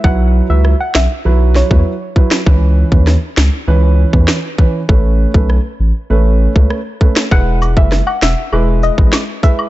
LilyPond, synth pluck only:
\new Staff \with { instrumentName = "Synth pluck" } { \time 4/4 \key e \major \tempo 4 = 99 fis''16 r8 e''16 r16 fis''16 e''16 r8. cis''16 r4 r16 | r1 | r1 | fis''16 r8 e''16 r16 fis''16 e''16 r8. dis''16 r8. e''16 r16 | }